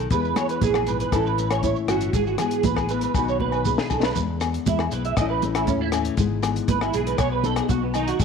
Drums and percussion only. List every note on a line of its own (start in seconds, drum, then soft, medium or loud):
0.00 shekere soft
0.10 kick medium
0.10 closed hi-hat soft
0.10 muted conga soft
0.10 shekere medium
0.25 shekere soft
0.36 cross-stick medium
0.36 closed hi-hat soft
0.36 muted conga soft
0.36 high conga medium
0.36 low agogo medium
0.36 shekere medium
0.49 closed hi-hat soft
0.49 shekere soft
0.61 kick medium
0.61 closed hi-hat soft
0.61 high conga medium
0.61 shekere medium
0.74 cross-stick medium
0.74 low agogo medium
0.87 closed hi-hat soft
0.87 shekere medium
1.00 closed hi-hat soft
1.00 shekere soft
1.12 kick medium
1.12 cross-stick medium
1.12 closed hi-hat soft
1.12 low agogo medium
1.12 shekere medium
1.26 shekere soft
1.38 closed hi-hat soft
1.38 shekere medium
1.51 cross-stick medium
1.51 closed hi-hat soft
1.51 low agogo medium
1.51 shekere soft
1.63 kick medium
1.63 closed hi-hat soft
1.63 high conga medium
1.63 shekere medium
1.76 shekere soft
1.88 cross-stick medium
1.88 closed hi-hat soft
1.88 muted conga soft
1.88 low agogo medium
1.88 shekere medium
2.01 closed hi-hat medium
2.01 shekere soft
2.13 kick medium
2.13 closed hi-hat soft
2.13 muted conga soft
2.13 shekere medium
2.27 shekere soft
2.38 cross-stick medium
2.38 closed hi-hat soft
2.38 muted conga soft
2.38 low conga medium
2.38 low agogo medium
2.38 shekere medium
2.51 closed hi-hat soft
2.51 shekere soft
2.63 kick medium
2.63 closed hi-hat medium
2.63 high conga medium
2.63 shekere medium
2.76 kick medium
2.76 cross-stick medium
2.76 low agogo medium
2.76 shekere soft
2.89 closed hi-hat soft
2.89 shekere medium
3.01 closed hi-hat soft
3.01 shekere soft
3.14 kick medium
3.14 muted conga soft
3.14 low agogo medium
3.14 shekere medium
3.28 shekere soft
3.40 kick soft
3.40 high conga medium
3.52 low agogo medium
3.52 shekere soft
3.65 kick medium
3.65 high conga medium
3.65 shekere medium
3.78 snare medium
3.78 shekere soft
3.90 kick medium
3.90 muted conga soft
3.90 low conga medium
3.90 low agogo medium
3.90 shekere medium
4.03 snare medium
4.03 shekere soft
4.15 kick medium
4.15 closed hi-hat soft
4.15 muted conga soft
4.15 shekere medium
4.41 cross-stick medium
4.41 closed hi-hat soft
4.41 low agogo medium
4.41 shekere medium
4.54 closed hi-hat soft
4.66 kick medium
4.66 closed hi-hat soft
4.66 muted conga soft
4.66 high conga medium
4.66 shekere medium
4.79 cross-stick medium
4.79 low agogo medium
4.91 closed hi-hat soft
4.91 shekere medium
5.05 closed hi-hat soft
5.17 kick medium
5.17 cross-stick medium
5.17 closed hi-hat soft
5.17 muted conga soft
5.17 low agogo medium
5.17 shekere medium
5.42 closed hi-hat soft
5.42 muted conga soft
5.42 high conga medium
5.42 shekere medium
5.55 cross-stick medium
5.55 closed hi-hat soft
5.55 low agogo medium
5.67 kick medium
5.67 closed hi-hat soft
5.67 high conga medium
5.67 shekere medium
5.92 cross-stick medium
5.92 closed hi-hat soft
5.92 low agogo medium
5.92 shekere medium
6.05 closed hi-hat medium
6.17 kick medium
6.17 closed hi-hat soft
6.17 muted conga soft
6.17 shekere medium
6.43 cross-stick medium
6.43 closed hi-hat medium
6.43 low agogo medium
6.43 shekere medium
6.56 closed hi-hat soft
6.68 kick medium
6.68 closed hi-hat medium
6.68 muted conga soft
6.68 high conga medium
6.68 shekere medium
6.81 cross-stick medium
6.81 low agogo medium
6.93 closed hi-hat medium
6.93 shekere medium
7.07 closed hi-hat soft
7.18 kick medium
7.18 cross-stick medium
7.18 closed hi-hat soft
7.18 muted conga soft
7.18 low agogo medium
7.18 shekere medium
7.44 closed hi-hat soft
7.44 muted conga soft
7.44 high conga medium
7.44 low conga medium
7.44 shekere medium
7.56 cross-stick medium
7.56 closed hi-hat soft
7.56 low agogo medium
7.69 kick medium
7.69 closed hi-hat soft
7.69 high conga medium
7.69 shekere medium
7.94 closed hi-hat soft
7.94 low agogo medium
7.94 shekere medium
8.08 closed hi-hat soft
8.20 kick medium
8.20 closed hi-hat soft
8.20 muted conga soft
8.20 shekere medium